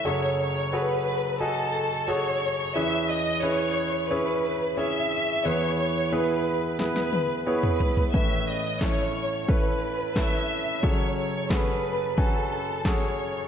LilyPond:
<<
  \new Staff \with { instrumentName = "Violin section" } { \time 4/4 \key cis \minor \tempo 4 = 89 cis''8 cis''8 b'4 a'4 cis''4 | e''8 dis''8 cis''4 b'4 e''4 | cis''8 cis''8 b'4 b'4 b'4 | e''8 dis''8 cis''4 b'4 e''4 |
cis''8 cis''8 b'4 a'4 cis''4 | }
  \new Staff \with { instrumentName = "Grand piano" } { \time 4/4 \key cis \minor <fis' gis' a' cis''>8. r16 <fis' gis' a' cis''>8. r16 <fis' a' dis'' gis''>8. r16 <fis' gis' a' cis''>8. r16 | <cis' e' gis' b'>8. r16 <cis' e' gis' b'>8. r16 <cis' e' gis' cis''>8. r16 <cis' e' gis' cis''>8. r16 | <b e' gis' b'>8. r16 <b e' gis' b'>8. r16 <b e' gis' b'>8. r16 <b e' gis' cis''>8. r16 | <cis' e' a' b'>8. r16 <cis' e' a' cis''>8. r16 <cis' e' a' b'>8. r16 <cis' e' a' b'>8. r16 |
<cis' fis' gis' a'>8. r16 <cis' fis' gis' a'>8. r16 <cis' fis' b' gis''>8. r16 <cis' fis' gis' a'>8. r16 | }
  \new Staff \with { instrumentName = "Grand piano" } { \clef bass \time 4/4 \key cis \minor <fis,, fis,>1 | <e, e>1 | <e, e>1 | <a,, a,>1 |
<fis,, fis,>1 | }
  \new DrumStaff \with { instrumentName = "Drums" } \drummode { \time 4/4 r4 r4 r4 r4 | r4 r4 r4 r4 | r4 r4 sn16 sn16 tommh8 r16 toml16 tomfh16 tomfh16 | bd4 <hc bd sn>4 bd4 <hc bd sn>4 |
bd4 <hc bd sn>4 bd4 <hc bd sn>4 | }
>>